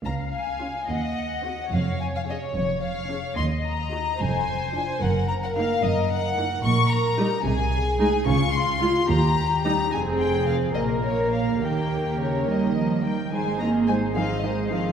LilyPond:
<<
  \new Staff \with { instrumentName = "Violin section" } { \time 6/8 \key ees \dorian \tempo 4. = 72 bes''8 aes''4 ges''4 ges''8 | f''8 aes''16 f''16 ees''8 des''8 f''4 | c'''8 bes''4 aes''4 aes''8 | ges''8 bes''16 ges''16 f''8 ees''8 ges''4 |
\key aes \major des'''8 bes''4 aes''4 aes''8 | des'''8 c'''4 bes''4 bes''8 | aes''8 g''8 f''8 ees''8 des''8 f''8 | g''4 des''8 ees''4 g''8 |
aes''8 bes''8 aes''8 f''8 ees''8 f''8 | }
  \new Staff \with { instrumentName = "Violin section" } { \time 6/8 \key ees \dorian f''4. ees''4. | des''2. | ees''4. c''4. | bes'2. |
\key aes \major bes'4. aes'4. | f'4. g'4. | aes'4. bes'4. | g'2~ g'16 r8. |
c''8 <aes' ees''>8 c''8 <aes' ees''>8 c''8 <aes' ees''>8 | }
  \new Staff \with { instrumentName = "Viola section" } { \time 6/8 \key ees \dorian r4 <des' f'>8 r4 <c' ges'>8 | r4 <des' aes'>8 r4 <des' aes'>8 | r4 <ees' ges'>8 r4 <d' f'>8 | r4 <bes ees'>8 r4 <bes ees'>8 |
\key aes \major r4 <g ees'>16 r4 r16 <aes ees'>16 r16 | r4 <aes f'>16 r4 r16 <g ees'>16 r16 | <c' aes'>4. <bes bes'>4. | <bes bes'>2~ <bes bes'>8 r8 |
<aes ees'>8 <ees c'>8 <aes ees'>8 <ees c'>8 <aes ees'>8 <ees c'>8 | }
  \new Staff \with { instrumentName = "Cello section" } { \clef bass \time 6/8 \key ees \dorian << { des,4. ees,4. | f,4. f,4. | ees,4. f,4. | ges,4. ges,4. |
\key aes \major bes,4. c4. | des4. ees,4. | f,4. bes,4. | ees4 des8 ees4 g8 |
aes8 bes8 aes8 f8 ees8 f8 | } \\ { r2. | r2. | r2. | r2. |
r2. | r2. | r2. | r4. g8 f8 ees8 |
r2. | } >> }
  \new Staff \with { instrumentName = "Double bass section" } { \clef bass \time 6/8 \key ees \dorian des,4. ees,4. | f,,4. f,,4. | ees,4. f,,4. | ges,,4. ges,,4. |
\key aes \major bes,,4. c,4. | des,4. ees,4. | f,,4. bes,,4. | ees,2~ ees,8 r8 |
aes,,2. | }
>>